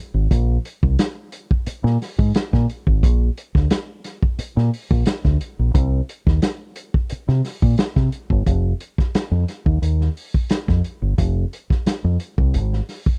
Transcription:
0.14 fingered electric bass G#1
0.31 fingered electric bass A#1, kick, closed hi-hat
0.65 closed hi-hat
0.83 fingered electric bass C2, kick
0.99 snare, closed hi-hat
1.32 closed hi-hat
1.51 kick
1.66 muted fingered electric bass stroke, closed hi-hat
1.84 fingered electric bass A#2, snare
2.02 snare, open hi-hat
2.18 fingered electric bass G#2, kick
2.35 snare, closed hi-hat
2.53 fingered electric bass A#2, kick, snare
2.70 closed hi-hat
2.87 fingered electric bass G#1, kick
3.03 fingered electric bass A#1, kick, closed hi-hat
3.37 closed hi-hat
3.55 fingered electric bass D2, kick, snare
3.70 snare, closed hi-hat
4.04 snare, closed hi-hat
4.23 kick
4.39 muted fingered electric bass stroke, closed hi-hat
4.57 fingered electric bass A#2, snare
4.74 open hi-hat
4.91 fingered electric bass A#1, kick
5.06 snare, closed hi-hat
5.25 fingered electric bass D2, kick, snare
5.41 closed hi-hat
5.59 fingered electric bass A#1
5.74 fingered electric bass C2, kick, closed hi-hat
6.09 closed hi-hat
6.26 fingered electric bass D#2, kick, snare
6.42 snare, closed hi-hat
6.76 closed hi-hat
6.94 kick
7.10 muted fingered electric bass stroke, closed hi-hat
7.28 fingered electric bass C3, snare
7.45 snare, open hi-hat
7.62 fingered electric bass A#2, kick
7.78 snare, closed hi-hat
7.96 fingered electric bass C3, kick, snare
8.12 closed hi-hat
8.30 fingered electric bass G1, kick
8.46 fingered electric bass F1, kick, closed hi-hat
8.80 closed hi-hat
8.98 muted fingered electric bass stroke, kick, snare
9.15 muted fingered electric bass stroke, snare, closed hi-hat
9.31 fingered electric bass F2
9.48 snare, closed hi-hat
9.66 fingered electric bass D#2, kick
9.82 fingered electric bass D#2, closed hi-hat
10.01 snare
10.17 open hi-hat
10.34 kick
10.50 snare, closed hi-hat
10.68 fingered electric bass F2, kick, snare
10.84 closed hi-hat
11.02 fingered electric bass G1
11.18 fingered electric bass F1, kick, closed hi-hat
11.53 closed hi-hat
11.70 muted fingered electric bass stroke, kick, snare
11.86 muted fingered electric bass stroke, snare, closed hi-hat
12.04 fingered electric bass F2
12.20 closed hi-hat
12.38 fingered electric bass C2, kick
12.54 fingered electric bass G#1, closed hi-hat
12.73 snare
12.89 snare, open hi-hat
13.06 kick

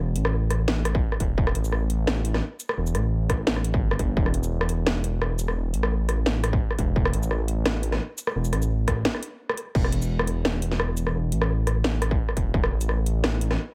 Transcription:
0.00 detuned saw bass E1
0.16 detuned saw bass A1, closed hi-hat
0.25 cross-stick
0.50 cross-stick, closed hi-hat
0.68 snare
0.85 cross-stick, closed hi-hat
0.95 kick
1.12 cross-stick
1.20 detuned saw bass E1, kick, closed hi-hat
1.38 detuned saw bass E1, kick
1.47 cross-stick
1.55 detuned saw bass A1, closed hi-hat
1.64 shaker
1.72 cross-stick
1.90 closed hi-hat
2.07 cross-stick, snare
2.25 closed hi-hat
2.34 cross-stick, snare
2.60 closed hi-hat, shaker
2.69 cross-stick
2.77 detuned saw bass E1
2.87 shaker
2.95 detuned saw bass A1, cross-stick, closed hi-hat
3.30 kick, cross-stick, closed hi-hat
3.47 snare
3.56 cross-stick
3.64 closed hi-hat
3.74 kick
3.82 detuned saw bass G1
3.91 cross-stick
3.99 kick, closed hi-hat
4.17 detuned saw bass E1, kick
4.26 cross-stick
4.34 closed hi-hat
4.43 shaker
4.61 cross-stick
4.69 closed hi-hat
4.87 cross-stick, snare
5.04 closed hi-hat
5.22 cross-stick
5.39 closed hi-hat, shaker
5.48 cross-stick
5.56 detuned saw bass E1
5.74 detuned saw bass A1, closed hi-hat
5.83 cross-stick
6.09 cross-stick, closed hi-hat
6.26 snare
6.44 cross-stick, closed hi-hat
6.53 kick
6.71 cross-stick
6.79 detuned saw bass E1, kick, closed hi-hat
6.96 detuned saw bass E1, kick
7.05 cross-stick
7.13 detuned saw bass A1, closed hi-hat
7.23 shaker
7.31 cross-stick
7.48 closed hi-hat
7.66 cross-stick, snare
7.83 closed hi-hat
7.92 cross-stick, snare
8.18 closed hi-hat, shaker
8.27 cross-stick
8.36 detuned saw bass E1
8.45 shaker
8.53 detuned saw bass A1, cross-stick, closed hi-hat
8.62 shaker
8.88 kick, cross-stick, closed hi-hat
9.05 snare
9.15 cross-stick
9.23 closed hi-hat
9.49 cross-stick
9.57 closed hi-hat
9.75 detuned saw bass E1, kick, crash
9.84 cross-stick
9.92 closed hi-hat
10.02 shaker
10.19 cross-stick
10.27 closed hi-hat
10.45 cross-stick, snare
10.62 closed hi-hat
10.71 snare
10.80 cross-stick
10.97 closed hi-hat, shaker
11.07 cross-stick
11.14 detuned saw bass E1
11.32 detuned saw bass A1, closed hi-hat
11.42 cross-stick
11.67 cross-stick, closed hi-hat
11.84 snare
12.02 cross-stick, closed hi-hat
12.11 kick
12.29 cross-stick
12.37 detuned saw bass E1, kick, closed hi-hat
12.54 detuned saw bass E1, kick
12.64 cross-stick
12.71 detuned saw bass A1
12.81 closed hi-hat, shaker
12.89 cross-stick
13.06 closed hi-hat
13.24 cross-stick, snare
13.41 closed hi-hat
13.51 cross-stick, snare

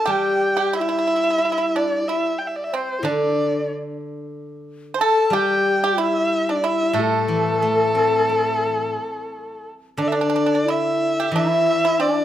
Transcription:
Already playing: xiao A4, erhu A5
0.06 guzheng G3, pipa G4, xiao G4
0.10 erhu G5
0.57 pipa G4
0.61 xiao G4
0.73 pipa E4
0.78 xiao E4, pipa E4, erhu E5
0.89 pipa E4
0.99 pipa E4
1.07 pipa E4
1.16 pipa E4
1.24 pipa E4
1.31 pipa E4
1.38 pipa E4
1.44 xiao E4, pipa E4
1.52 pipa E4
1.58 pipa E4
1.75 pipa D4, erhu D5
2.08 xiao E4, pipa E4, erhu E5
2.38 erhu G5
2.47 erhu E5
2.56 erhu D5
2.64 xiao D5, erhu E5
2.73 pipa C4, xiao C5, erhu C5
2.99 guzheng D3, xiao E4
3.05 pipa D4, xiao D4, erhu D5
4.94 pipa C5
5.00 xiao A4, pipa A4, erhu A5
5.30 guzheng G3, xiao G4, pipa G4
5.34 erhu G5
5.84 pipa G4
5.98 pipa E4, xiao E4, erhu E5
6.49 xiao D4, pipa D4, erhu D5
6.64 pipa E4, xiao E4, erhu E5
6.93 guzheng A2, pipa A3
6.99 xiao A4, erhu A4
7.28 guzheng E3
7.62 guzheng A3
7.95 guzheng C4
8.29 guzheng E4
9.97 guzheng D3, pipa D4, xiao D4
10.02 erhu D5
10.08 erhu E5
10.12 pipa D4, xiao D4, erhu D5
10.21 pipa D4
10.30 pipa D4
10.36 pipa D4
10.46 pipa D4
10.55 pipa D4
10.65 xiao E4, pipa E4
10.70 erhu E5
11.20 pipa G4
11.31 guzheng E3, xiao E4
11.36 pipa E4, erhu E5
11.85 pipa E4
11.99 xiao D4, pipa D4, erhu D5

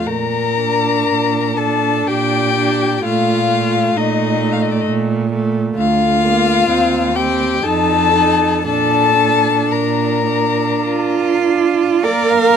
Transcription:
0.07 cello A#2, violin A#4 A#5
0.61 viola D4
1.10 cello A#2
1.57 viola D4, violin A4 A5
2.07 cello A#2, violin G4 G5
2.57 viola D4
3.04 cello A#2, viola A3, violin F4 F5
3.50 viola A3
3.95 cello A#2, violin D#4 D#5
4.42 viola A3
4.53 violin F5
4.62 violin D#5
4.71 violin D5
4.81 violin D#5
4.86 cello A#2
5.33 viola A3
5.76 cello D2, violin F4 F5
6.24 viola A#3
6.68 cello D#2, viola C4
7.16 viola C4, violin G4 G5
7.63 cello F2, viola D#4, violin A4 A5
8.15 viola D#4
8.66 cello A#2, viola D4, violin A4 A5
9.19 viola D4
9.71 cello A#2, violin A#4 A#5
10.27 viola D4
10.82 cello F4
11.45 viola D4
12.03 viola A#3, cello A#4, violin D5 F5
12.30 violin F5

